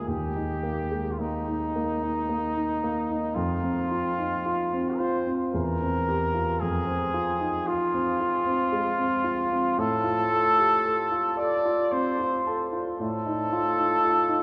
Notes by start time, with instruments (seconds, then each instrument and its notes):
0.07 grand piano D#2, trumpet G4
0.36 grand piano D#4
0.63 grand piano A#3
0.92 grand piano G#3
1.11 trumpet F4
1.19 grand piano A#3, trumpet D#4
1.48 grand piano D#4
1.76 grand piano A#3
2.02 grand piano D#4
2.29 grand piano A#3
2.57 grand piano D#4
2.84 grand piano A#3
3.10 grand piano D#4
3.35 grand piano F2, trumpet F4
3.64 grand piano C4
3.91 grand piano F4
4.18 grand piano D#4
4.46 grand piano F4
4.73 grand piano C4
4.97 grand piano F4, trumpet C5
5.27 grand piano C4
5.53 grand piano E2, trumpet A#4
5.82 grand piano C4
6.08 grand piano G4
6.34 grand piano F4
6.61 grand piano F2, trumpet G#4
6.87 grand piano C4
7.14 grand piano F4
7.40 grand piano D#4
7.67 trumpet F4, grand piano F4
7.94 grand piano C4
8.20 grand piano F4
8.46 grand piano C4
8.72 grand piano G#3
8.99 grand piano C4
9.24 grand piano F4
9.51 grand piano C4
9.78 grand piano A2, trumpet A4
10.04 grand piano F4
10.31 grand piano A4
10.58 grand piano G4
10.85 grand piano A4
11.12 grand piano F4
11.37 grand piano A4, trumpet D5
11.65 grand piano F4
11.92 grand piano C4, trumpet C5
12.19 grand piano F4
12.47 grand piano A4
12.73 grand piano F4
12.99 grand piano A2, trumpet A4
13.26 grand piano D#4
13.53 grand piano F4
13.78 grand piano D#4
14.05 grand piano F4
14.29 grand piano D#4